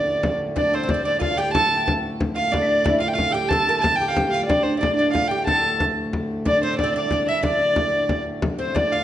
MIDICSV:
0, 0, Header, 1, 6, 480
1, 0, Start_track
1, 0, Key_signature, -1, "minor"
1, 0, Tempo, 327332
1, 834, Time_signature, 6, 3, 24, 8
1, 13253, End_track
2, 0, Start_track
2, 0, Title_t, "Fiddle"
2, 0, Program_c, 0, 110
2, 0, Note_on_c, 0, 74, 87
2, 525, Note_off_c, 0, 74, 0
2, 844, Note_on_c, 0, 74, 80
2, 1096, Note_on_c, 0, 72, 73
2, 1118, Note_off_c, 0, 74, 0
2, 1320, Note_on_c, 0, 74, 80
2, 1342, Note_off_c, 0, 72, 0
2, 1530, Note_off_c, 0, 74, 0
2, 1539, Note_on_c, 0, 74, 82
2, 1759, Note_off_c, 0, 74, 0
2, 1767, Note_on_c, 0, 77, 82
2, 2013, Note_on_c, 0, 79, 92
2, 2035, Note_off_c, 0, 77, 0
2, 2230, Note_off_c, 0, 79, 0
2, 2239, Note_on_c, 0, 81, 100
2, 2758, Note_off_c, 0, 81, 0
2, 3452, Note_on_c, 0, 77, 83
2, 3703, Note_on_c, 0, 74, 93
2, 3725, Note_off_c, 0, 77, 0
2, 4390, Note_off_c, 0, 74, 0
2, 4398, Note_on_c, 0, 77, 86
2, 4518, Note_on_c, 0, 79, 75
2, 4540, Note_off_c, 0, 77, 0
2, 4600, Note_on_c, 0, 77, 96
2, 4622, Note_off_c, 0, 79, 0
2, 4878, Note_on_c, 0, 79, 91
2, 4900, Note_off_c, 0, 77, 0
2, 5112, Note_on_c, 0, 81, 103
2, 5134, Note_off_c, 0, 79, 0
2, 5564, Note_off_c, 0, 81, 0
2, 5573, Note_on_c, 0, 81, 95
2, 5801, Note_on_c, 0, 79, 90
2, 5823, Note_off_c, 0, 81, 0
2, 5984, Note_on_c, 0, 77, 76
2, 6006, Note_off_c, 0, 79, 0
2, 6027, Note_on_c, 0, 79, 92
2, 6049, Note_off_c, 0, 77, 0
2, 6300, Note_off_c, 0, 79, 0
2, 6308, Note_on_c, 0, 77, 77
2, 6516, Note_off_c, 0, 77, 0
2, 6525, Note_on_c, 0, 74, 88
2, 6785, Note_on_c, 0, 72, 79
2, 6807, Note_off_c, 0, 74, 0
2, 7011, Note_off_c, 0, 72, 0
2, 7020, Note_on_c, 0, 74, 82
2, 7259, Note_off_c, 0, 74, 0
2, 7267, Note_on_c, 0, 74, 86
2, 7496, Note_off_c, 0, 74, 0
2, 7505, Note_on_c, 0, 77, 84
2, 7742, Note_on_c, 0, 79, 83
2, 7764, Note_off_c, 0, 77, 0
2, 7999, Note_off_c, 0, 79, 0
2, 8008, Note_on_c, 0, 81, 92
2, 8522, Note_off_c, 0, 81, 0
2, 9497, Note_on_c, 0, 74, 88
2, 9709, Note_off_c, 0, 74, 0
2, 9728, Note_on_c, 0, 72, 81
2, 9938, Note_off_c, 0, 72, 0
2, 9946, Note_on_c, 0, 74, 87
2, 10172, Note_off_c, 0, 74, 0
2, 10191, Note_on_c, 0, 74, 89
2, 10638, Note_off_c, 0, 74, 0
2, 10674, Note_on_c, 0, 76, 88
2, 10891, Note_off_c, 0, 76, 0
2, 10900, Note_on_c, 0, 74, 86
2, 12047, Note_off_c, 0, 74, 0
2, 12613, Note_on_c, 0, 72, 70
2, 12862, Note_on_c, 0, 74, 78
2, 12884, Note_off_c, 0, 72, 0
2, 13089, Note_on_c, 0, 77, 81
2, 13111, Note_off_c, 0, 74, 0
2, 13253, Note_off_c, 0, 77, 0
2, 13253, End_track
3, 0, Start_track
3, 0, Title_t, "Recorder"
3, 0, Program_c, 1, 74
3, 832, Note_on_c, 1, 74, 72
3, 920, Note_off_c, 1, 74, 0
3, 1080, Note_on_c, 1, 72, 73
3, 1524, Note_off_c, 1, 72, 0
3, 1547, Note_on_c, 1, 74, 76
3, 2220, Note_off_c, 1, 74, 0
3, 2275, Note_on_c, 1, 81, 90
3, 2596, Note_on_c, 1, 79, 74
3, 2618, Note_off_c, 1, 81, 0
3, 2825, Note_off_c, 1, 79, 0
3, 3474, Note_on_c, 1, 77, 76
3, 3709, Note_on_c, 1, 74, 76
3, 3731, Note_off_c, 1, 77, 0
3, 3842, Note_on_c, 1, 76, 67
3, 3864, Note_off_c, 1, 74, 0
3, 3910, Note_on_c, 1, 74, 82
3, 3932, Note_off_c, 1, 76, 0
3, 4428, Note_on_c, 1, 77, 76
3, 4450, Note_off_c, 1, 74, 0
3, 4534, Note_off_c, 1, 77, 0
3, 4637, Note_on_c, 1, 77, 69
3, 4914, Note_on_c, 1, 79, 76
3, 4936, Note_off_c, 1, 77, 0
3, 5154, Note_off_c, 1, 79, 0
3, 5176, Note_on_c, 1, 81, 93
3, 5612, Note_off_c, 1, 81, 0
3, 5644, Note_on_c, 1, 81, 83
3, 5863, Note_off_c, 1, 81, 0
3, 5871, Note_on_c, 1, 79, 83
3, 5968, Note_off_c, 1, 79, 0
3, 6068, Note_on_c, 1, 79, 74
3, 6552, Note_off_c, 1, 79, 0
3, 6568, Note_on_c, 1, 74, 74
3, 7026, Note_off_c, 1, 74, 0
3, 7070, Note_on_c, 1, 74, 67
3, 7295, Note_off_c, 1, 74, 0
3, 7303, Note_on_c, 1, 74, 68
3, 7542, Note_on_c, 1, 77, 65
3, 7564, Note_off_c, 1, 74, 0
3, 7769, Note_off_c, 1, 77, 0
3, 7777, Note_on_c, 1, 79, 70
3, 8009, Note_on_c, 1, 81, 77
3, 8031, Note_off_c, 1, 79, 0
3, 8561, Note_off_c, 1, 81, 0
3, 9488, Note_on_c, 1, 74, 82
3, 9704, Note_off_c, 1, 74, 0
3, 9719, Note_on_c, 1, 72, 75
3, 9939, Note_off_c, 1, 72, 0
3, 9946, Note_on_c, 1, 74, 74
3, 10172, Note_off_c, 1, 74, 0
3, 10205, Note_on_c, 1, 74, 85
3, 10680, Note_on_c, 1, 76, 82
3, 10702, Note_off_c, 1, 74, 0
3, 10916, Note_off_c, 1, 76, 0
3, 10923, Note_on_c, 1, 74, 86
3, 12058, Note_off_c, 1, 74, 0
3, 12589, Note_on_c, 1, 72, 69
3, 12827, Note_on_c, 1, 74, 62
3, 12849, Note_off_c, 1, 72, 0
3, 13069, Note_off_c, 1, 74, 0
3, 13076, Note_on_c, 1, 77, 75
3, 13253, Note_off_c, 1, 77, 0
3, 13253, End_track
4, 0, Start_track
4, 0, Title_t, "Oud"
4, 0, Program_c, 2, 24
4, 818, Note_on_c, 2, 62, 68
4, 1072, Note_off_c, 2, 62, 0
4, 1078, Note_on_c, 2, 60, 70
4, 1206, Note_off_c, 2, 60, 0
4, 1224, Note_on_c, 2, 60, 62
4, 1363, Note_off_c, 2, 60, 0
4, 1380, Note_on_c, 2, 60, 67
4, 1537, Note_off_c, 2, 60, 0
4, 1543, Note_on_c, 2, 62, 65
4, 1752, Note_off_c, 2, 62, 0
4, 1758, Note_on_c, 2, 65, 74
4, 2019, Note_off_c, 2, 65, 0
4, 2025, Note_on_c, 2, 67, 81
4, 2265, Note_off_c, 2, 67, 0
4, 2271, Note_on_c, 2, 69, 80
4, 2775, Note_off_c, 2, 69, 0
4, 3457, Note_on_c, 2, 65, 69
4, 3689, Note_on_c, 2, 62, 73
4, 3713, Note_off_c, 2, 65, 0
4, 4165, Note_off_c, 2, 62, 0
4, 4171, Note_on_c, 2, 64, 71
4, 4405, Note_on_c, 2, 65, 73
4, 4430, Note_off_c, 2, 64, 0
4, 4514, Note_off_c, 2, 65, 0
4, 4619, Note_on_c, 2, 65, 72
4, 4844, Note_off_c, 2, 65, 0
4, 4850, Note_on_c, 2, 69, 54
4, 4895, Note_off_c, 2, 69, 0
4, 4901, Note_on_c, 2, 67, 77
4, 5155, Note_off_c, 2, 67, 0
4, 5169, Note_on_c, 2, 69, 83
4, 5404, Note_off_c, 2, 69, 0
4, 5410, Note_on_c, 2, 70, 92
4, 5879, Note_off_c, 2, 70, 0
4, 5885, Note_on_c, 2, 67, 72
4, 5975, Note_off_c, 2, 67, 0
4, 6108, Note_on_c, 2, 67, 71
4, 6364, Note_off_c, 2, 67, 0
4, 6369, Note_on_c, 2, 65, 73
4, 6592, Note_on_c, 2, 62, 73
4, 6608, Note_off_c, 2, 65, 0
4, 6995, Note_off_c, 2, 62, 0
4, 7001, Note_on_c, 2, 64, 50
4, 7046, Note_off_c, 2, 64, 0
4, 7052, Note_on_c, 2, 62, 66
4, 7300, Note_off_c, 2, 62, 0
4, 7318, Note_on_c, 2, 62, 64
4, 7528, Note_on_c, 2, 65, 68
4, 7563, Note_off_c, 2, 62, 0
4, 7782, Note_off_c, 2, 65, 0
4, 7788, Note_on_c, 2, 67, 73
4, 8027, Note_off_c, 2, 67, 0
4, 8033, Note_on_c, 2, 69, 71
4, 8535, Note_off_c, 2, 69, 0
4, 9464, Note_on_c, 2, 62, 75
4, 9715, Note_off_c, 2, 62, 0
4, 9721, Note_on_c, 2, 60, 74
4, 9851, Note_off_c, 2, 60, 0
4, 9869, Note_on_c, 2, 60, 57
4, 10008, Note_off_c, 2, 60, 0
4, 10025, Note_on_c, 2, 60, 72
4, 10194, Note_off_c, 2, 60, 0
4, 10203, Note_on_c, 2, 62, 74
4, 10426, Note_off_c, 2, 62, 0
4, 10443, Note_on_c, 2, 62, 73
4, 10677, Note_off_c, 2, 62, 0
4, 10683, Note_on_c, 2, 64, 84
4, 10885, Note_off_c, 2, 64, 0
4, 10891, Note_on_c, 2, 62, 76
4, 12042, Note_off_c, 2, 62, 0
4, 12590, Note_on_c, 2, 60, 66
4, 12820, Note_off_c, 2, 60, 0
4, 12826, Note_on_c, 2, 62, 63
4, 13076, Note_off_c, 2, 62, 0
4, 13089, Note_on_c, 2, 65, 63
4, 13253, Note_off_c, 2, 65, 0
4, 13253, End_track
5, 0, Start_track
5, 0, Title_t, "Harmonium"
5, 0, Program_c, 3, 20
5, 0, Note_on_c, 3, 38, 73
5, 0, Note_on_c, 3, 45, 74
5, 837, Note_off_c, 3, 38, 0
5, 842, Note_off_c, 3, 45, 0
5, 859, Note_on_c, 3, 38, 73
5, 864, Note_on_c, 3, 45, 76
5, 6563, Note_off_c, 3, 45, 0
5, 6565, Note_off_c, 3, 38, 0
5, 6585, Note_on_c, 3, 45, 72
5, 6587, Note_on_c, 3, 38, 75
5, 12336, Note_off_c, 3, 45, 0
5, 12338, Note_off_c, 3, 38, 0
5, 12358, Note_on_c, 3, 45, 69
5, 12360, Note_on_c, 3, 38, 70
5, 13253, Note_off_c, 3, 38, 0
5, 13253, Note_off_c, 3, 45, 0
5, 13253, End_track
6, 0, Start_track
6, 0, Title_t, "Frame drum"
6, 342, Note_on_c, 9, 64, 83
6, 488, Note_off_c, 9, 64, 0
6, 827, Note_on_c, 9, 64, 77
6, 973, Note_off_c, 9, 64, 0
6, 1301, Note_on_c, 9, 64, 83
6, 1448, Note_off_c, 9, 64, 0
6, 1778, Note_on_c, 9, 64, 77
6, 1925, Note_off_c, 9, 64, 0
6, 2268, Note_on_c, 9, 64, 89
6, 2415, Note_off_c, 9, 64, 0
6, 2753, Note_on_c, 9, 64, 87
6, 2900, Note_off_c, 9, 64, 0
6, 3233, Note_on_c, 9, 64, 82
6, 3380, Note_off_c, 9, 64, 0
6, 3717, Note_on_c, 9, 64, 87
6, 3864, Note_off_c, 9, 64, 0
6, 4188, Note_on_c, 9, 64, 96
6, 4335, Note_off_c, 9, 64, 0
6, 4671, Note_on_c, 9, 64, 80
6, 4817, Note_off_c, 9, 64, 0
6, 5141, Note_on_c, 9, 64, 84
6, 5288, Note_off_c, 9, 64, 0
6, 5632, Note_on_c, 9, 64, 87
6, 5779, Note_off_c, 9, 64, 0
6, 5872, Note_on_c, 9, 64, 26
6, 6019, Note_off_c, 9, 64, 0
6, 6106, Note_on_c, 9, 64, 81
6, 6253, Note_off_c, 9, 64, 0
6, 6591, Note_on_c, 9, 64, 87
6, 6737, Note_off_c, 9, 64, 0
6, 7079, Note_on_c, 9, 64, 88
6, 7226, Note_off_c, 9, 64, 0
6, 7548, Note_on_c, 9, 64, 77
6, 7695, Note_off_c, 9, 64, 0
6, 8024, Note_on_c, 9, 64, 76
6, 8171, Note_off_c, 9, 64, 0
6, 8509, Note_on_c, 9, 64, 82
6, 8656, Note_off_c, 9, 64, 0
6, 8993, Note_on_c, 9, 64, 74
6, 9139, Note_off_c, 9, 64, 0
6, 9471, Note_on_c, 9, 64, 79
6, 9617, Note_off_c, 9, 64, 0
6, 9952, Note_on_c, 9, 64, 79
6, 10098, Note_off_c, 9, 64, 0
6, 10420, Note_on_c, 9, 64, 74
6, 10567, Note_off_c, 9, 64, 0
6, 10902, Note_on_c, 9, 64, 81
6, 11049, Note_off_c, 9, 64, 0
6, 11381, Note_on_c, 9, 64, 84
6, 11528, Note_off_c, 9, 64, 0
6, 11866, Note_on_c, 9, 64, 80
6, 12013, Note_off_c, 9, 64, 0
6, 12122, Note_on_c, 9, 64, 25
6, 12268, Note_off_c, 9, 64, 0
6, 12352, Note_on_c, 9, 64, 90
6, 12498, Note_off_c, 9, 64, 0
6, 12842, Note_on_c, 9, 64, 86
6, 12988, Note_off_c, 9, 64, 0
6, 13253, End_track
0, 0, End_of_file